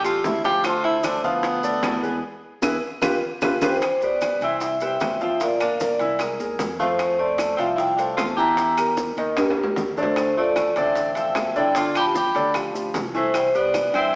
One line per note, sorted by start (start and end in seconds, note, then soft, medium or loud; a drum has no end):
0.00 0.21 A1 medium
0.04 0.37 G3 medium
0.04 0.27 F4 medium
0.04 0.37 G4 medium
0.04 0.38 A4 medium
0.04 high bongo soft
0.04 high conga soft
0.04 high timbale medium
0.04 maracas medium
0.24 1.18 D2 medium
0.24 0.44 E4 medium
0.24 high bongo medium
0.24 low bongo medium
0.24 high conga medium
0.24 low timbale medium
0.24 maracas medium
0.44 0.61 F3 loud
0.44 0.61 F4 loud
0.44 0.66 G4 loud
0.44 0.61 F5 medium
0.44 high bongo soft
0.44 high timbale medium
0.44 maracas soft
0.64 0.97 A3 medium
0.64 0.84 F4 medium
0.64 0.97 A4 medium
0.64 0.98 C5 medium
0.64 high bongo medium
0.64 high conga soft
0.64 high timbale medium
0.64 claves medium
0.64 maracas medium
0.84 1.06 E4 loud
0.84 high conga soft
0.84 high timbale medium
1.03 1.21 A3 medium
1.03 1.23 D4 medium
1.03 1.21 A4 medium
1.03 1.21 C5 medium
1.03 high bongo medium
1.03 high conga medium
1.03 high timbale medium
1.03 low timbale medium
1.03 claves medium
1.03 maracas medium
1.24 1.80 D2 loud
1.24 1.57 F3 medium
1.24 2.19 B3 loud
1.24 1.57 F4 loud
1.24 1.57 F5 loud
1.24 high conga soft
1.24 maracas soft
1.43 high bongo medium
1.43 high conga soft
1.43 high timbale medium
1.43 maracas medium
1.63 1.96 A3 medium
1.63 1.96 A4 medium
1.63 1.97 D5 medium
1.63 high conga soft
1.63 maracas medium
1.83 2.20 E2 medium
1.83 high bongo medium
1.83 low bongo medium
1.83 high conga medium
1.83 high timbale loud
1.83 low timbale medium
1.83 claves medium
1.83 maracas medium
2.03 2.19 G#3 medium
2.03 2.20 G#4 medium
2.03 2.20 B4 medium
2.03 high conga soft
2.03 maracas soft
2.62 2.77 E2 loud
2.62 2.75 E4 medium
2.62 2.75 G#4 medium
2.62 2.75 B4 loud
2.62 low bongo medium
2.62 high conga medium
2.62 high timbale loud
2.62 claves loud
2.62 maracas loud
3.01 3.17 G1 loud
3.01 3.15 F4 loud
3.01 3.15 G4 loud
3.01 3.15 B4 loud
3.01 low bongo loud
3.01 high conga loud
3.01 high timbale loud
3.01 claves loud
3.01 maracas medium
3.41 3.57 G1 loud
3.41 3.55 F4 loud
3.41 3.55 G4 loud
3.41 3.55 B4 loud
3.41 low bongo loud
3.41 high conga loud
3.41 high timbale loud
3.41 claves loud
3.41 maracas loud
3.62 3.77 G1 medium
3.62 4.00 G3 medium
3.62 3.75 F4 loud
3.62 3.75 G4 loud
3.62 3.75 B4 loud
3.62 4.04 C5 medium
3.62 low bongo loud
3.62 high conga loud
3.62 high timbale loud
3.62 claves medium
3.62 maracas loud
3.81 high bongo medium
3.81 high conga soft
3.81 high timbale medium
3.81 claves medium
3.81 maracas medium
4.01 4.35 G3 medium
4.01 4.40 B3 medium
4.01 4.35 G4 medium
4.01 4.35 B4 medium
4.01 4.40 D5 medium
4.01 high conga soft
4.01 maracas medium
4.21 high bongo medium
4.21 high conga medium
4.21 high timbale medium
4.21 low timbale medium
4.21 claves medium
4.21 maracas medium
4.41 4.97 C2 medium
4.41 4.74 E3 medium
4.41 4.80 C4 medium
4.41 4.75 E4 medium
4.41 4.75 E5 medium
4.41 high conga soft
4.41 high timbale medium
4.41 maracas soft
4.45 4.83 E5 medium
4.61 high bongo medium
4.61 high conga soft
4.61 maracas medium
4.80 5.14 G3 medium
4.80 5.14 G4 medium
4.80 5.14 B4 medium
4.80 5.19 E5 medium
4.80 high conga soft
4.80 high timbale medium
4.80 maracas medium
4.85 5.20 C4 medium
5.00 5.94 G1 medium
5.00 high bongo medium
5.00 low bongo medium
5.00 high conga medium
5.00 high timbale medium
5.00 low timbale medium
5.00 claves medium
5.00 maracas medium
5.20 5.37 F3 medium
5.20 5.40 C4 medium
5.20 5.37 F4 medium
5.20 5.42 E5 medium
5.20 5.38 F5 medium
5.20 high conga soft
5.20 maracas soft
5.40 5.57 F3 medium
5.40 5.60 A#3 medium
5.40 5.57 F4 medium
5.40 5.62 D5 medium
5.40 5.57 F5 medium
5.40 high bongo medium
5.40 high conga soft
5.40 high timbale medium
5.40 maracas medium
5.60 5.93 A#3 medium
5.60 5.80 D4 medium
5.60 5.93 A#4 medium
5.60 5.93 D5 medium
5.60 5.82 F5 medium
5.60 high conga soft
5.60 high timbale medium
5.60 claves medium
5.60 maracas medium
5.80 6.17 A#3 medium
5.80 6.18 D5 medium
5.80 high bongo medium
5.80 high conga medium
5.80 low timbale medium
5.80 maracas medium
5.99 6.37 C2 medium
5.99 6.16 E3 medium
5.99 6.16 E4 medium
5.99 6.17 E5 medium
5.99 high bongo soft
5.99 high conga soft
5.99 high timbale medium
5.99 maracas soft
6.19 6.36 G#3 medium
6.19 6.37 G#4 medium
6.19 6.37 A#4 medium
6.19 high bongo medium
6.19 high conga soft
6.19 high timbale medium
6.19 claves medium
6.19 maracas medium
6.39 6.58 D#2 medium
6.39 6.72 G#3 medium
6.39 6.72 G#4 medium
6.39 6.73 A#4 medium
6.39 high bongo soft
6.39 high conga soft
6.39 maracas medium
6.59 7.53 F2 medium
6.59 high bongo medium
6.59 low bongo medium
6.59 high conga medium
6.59 high timbale medium
6.59 low timbale medium
6.59 maracas medium
6.79 7.12 F3 medium
6.79 7.16 A3 medium
6.79 7.12 F4 medium
6.79 7.17 C5 medium
6.79 7.12 F5 medium
6.79 high bongo soft
6.79 high conga medium
6.79 maracas soft
6.99 high bongo medium
6.99 high conga soft
6.99 high timbale medium
6.99 claves medium
6.99 maracas medium
7.18 7.55 A3 medium
7.18 7.52 A3 medium
7.18 7.52 A4 medium
7.18 7.52 C5 medium
7.18 7.56 D5 medium
7.18 high conga soft
7.38 high bongo medium
7.38 high conga medium
7.38 high timbale medium
7.38 low timbale medium
7.38 claves medium
7.38 maracas medium
7.57 8.14 C2 medium
7.57 7.91 F3 medium
7.57 7.66 C4 medium
7.57 7.92 F4 medium
7.57 7.68 E5 medium
7.57 7.92 F5 medium
7.57 high timbale medium
7.57 maracas soft
7.76 7.95 E4 medium
7.76 7.99 G5 medium
7.76 high bongo medium
7.76 high conga soft
7.76 maracas medium
7.96 8.31 A3 medium
7.96 8.15 D4 medium
7.96 8.31 A4 medium
7.96 8.31 C5 medium
7.96 8.19 F5 medium
7.96 high conga soft
7.96 high timbale medium
7.96 maracas medium
8.17 9.11 E2 medium
8.17 8.26 F4 medium
8.17 8.27 A5 loud
8.17 high bongo medium
8.17 low bongo medium
8.17 high conga medium
8.17 high timbale medium
8.17 low timbale medium
8.17 claves medium
8.17 maracas medium
8.37 8.54 E3 medium
8.37 8.54 E4 medium
8.37 8.93 G4 medium
8.37 8.55 E5 medium
8.37 8.94 A#5 loud
8.37 high conga soft
8.37 maracas soft
8.57 8.74 E3 medium
8.57 8.74 E4 medium
8.57 8.75 E5 medium
8.57 high bongo medium
8.57 high conga soft
8.57 high timbale medium
8.57 maracas medium
8.78 9.10 G3 medium
8.78 9.11 G4 medium
8.78 9.11 A#4 medium
8.78 high conga soft
8.78 high timbale medium
8.78 claves medium
8.78 maracas medium
8.97 high bongo medium
8.97 high conga medium
8.97 low timbale medium
8.97 maracas medium
9.17 9.73 D#2 medium
9.17 9.34 D#3 medium
9.17 9.34 D#4 medium
9.17 9.34 D#5 medium
9.17 high bongo soft
9.17 high conga soft
9.17 high timbale medium
9.17 maracas soft
9.37 9.54 G3 medium
9.37 9.54 G4 medium
9.37 9.55 A#4 medium
9.37 high bongo medium
9.37 high conga soft
9.37 high timbale loud
9.37 claves medium
9.37 maracas medium
9.50 high timbale loud
9.57 9.90 G3 medium
9.57 9.90 G4 medium
9.57 9.90 A#4 medium
9.57 high bongo soft
9.57 high conga soft
9.64 low timbale loud
9.76 10.70 D2 medium
9.76 high bongo medium
9.76 low bongo medium
9.76 high conga medium
9.76 low timbale medium
9.76 maracas medium
9.96 10.30 D3 medium
9.96 10.34 A3 medium
9.96 10.30 D4 medium
9.96 10.39 C5 medium
9.96 10.30 D5 medium
9.96 high bongo soft
9.96 high conga medium
9.96 maracas soft
10.03 low timbale medium
10.16 high bongo medium
10.16 high conga soft
10.16 high timbale medium
10.16 claves medium
10.16 maracas medium
10.37 10.70 F3 medium
10.37 10.74 A3 medium
10.37 10.70 F4 medium
10.37 10.70 A4 medium
10.37 10.75 D5 medium
10.37 high conga soft
10.56 high bongo medium
10.56 high conga medium
10.56 high timbale medium
10.56 low timbale medium
10.56 claves medium
10.56 maracas medium
10.76 11.32 A1 medium
10.76 11.09 D3 medium
10.76 11.13 C4 medium
10.76 11.09 D4 medium
10.76 11.09 D5 medium
10.76 11.17 E5 medium
10.76 high conga soft
10.76 high timbale medium
10.76 maracas soft
10.96 high bongo medium
10.96 high conga soft
10.96 maracas medium
11.15 11.49 F3 medium
11.15 11.53 C4 medium
11.15 11.49 F4 medium
11.15 11.49 A4 medium
11.15 11.54 E5 medium
11.15 high conga soft
11.15 high timbale medium
11.15 maracas medium
11.35 12.29 G1 medium
11.35 high bongo medium
11.35 low bongo medium
11.35 high conga medium
11.35 high timbale medium
11.35 low timbale medium
11.35 claves medium
11.35 maracas medium
11.56 11.72 D3 medium
11.56 11.72 D4 medium
11.56 11.75 E4 medium
11.56 11.73 D5 medium
11.56 11.76 G5 medium
11.56 high conga soft
11.56 maracas soft
11.75 11.92 D3 medium
11.75 11.92 D4 medium
11.75 11.95 F4 medium
11.75 11.92 D5 medium
11.75 11.98 A5 loud
11.75 high bongo medium
11.75 high conga soft
11.75 high timbale medium
11.75 maracas medium
11.95 12.28 F3 medium
11.95 12.28 F4 medium
11.95 12.28 G4 medium
11.95 12.05 G4 medium
11.95 12.07 B5 loud
11.95 high conga soft
11.95 high timbale medium
11.95 claves medium
11.95 maracas medium
12.15 12.53 G4 medium
12.15 12.54 B5 medium
12.15 high bongo medium
12.15 high conga medium
12.15 low timbale medium
12.15 maracas medium
12.35 12.72 D2 medium
12.35 12.52 D3 medium
12.35 12.52 D4 medium
12.35 12.52 D5 medium
12.35 high bongo soft
12.35 high timbale medium
12.35 maracas soft
12.54 12.71 F3 medium
12.54 12.71 F4 medium
12.54 12.71 G4 medium
12.54 high bongo medium
12.54 high conga soft
12.54 high timbale medium
12.54 claves medium
12.54 maracas medium
12.74 12.94 D2 medium
12.74 13.07 F3 medium
12.74 13.08 F4 medium
12.74 13.08 G4 medium
12.74 high bongo soft
12.74 high conga soft
12.74 maracas medium
12.94 13.88 C2 medium
12.94 high bongo medium
12.94 low bongo medium
12.94 high conga medium
12.94 high timbale medium
12.94 low timbale medium
12.94 maracas medium
13.14 13.47 E3 medium
13.14 13.33 A3 medium
13.14 13.48 E4 medium
13.14 13.35 C5 medium
13.14 13.48 E5 medium
13.14 high bongo soft
13.14 maracas soft
13.34 13.43 G3 medium
13.34 13.45 C5 medium
13.34 high bongo medium
13.34 high conga soft
13.34 high timbale medium
13.34 claves medium
13.34 maracas medium
13.54 13.87 G3 medium
13.54 13.92 B3 medium
13.54 13.87 G4 medium
13.54 13.87 B4 medium
13.54 13.96 D5 medium
13.54 high conga soft
13.54 maracas medium
13.74 high bongo medium
13.74 high conga medium
13.74 high timbale medium
13.74 low timbale medium
13.74 claves medium
13.74 maracas medium
13.93 14.15 G2 medium
13.93 14.15 E3 medium
13.93 14.15 C4 loud
13.93 14.15 E4 medium
13.93 14.15 E5 medium
13.93 14.15 E5 loud
13.93 high conga soft
13.93 high timbale medium
13.93 maracas soft